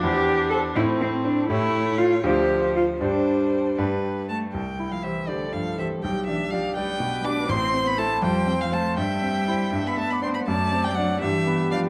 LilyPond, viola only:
\new Staff \with { instrumentName = "Viola" } { \time 6/8 \key c \major \tempo 4. = 81 d'4. c'4. | a4. f4. | g2~ g16 r8. | r4. a'4. |
g'4. b'4. | c''4. c''4. | e''4. e''8. d''16 c''8 | d''4. g'4. | }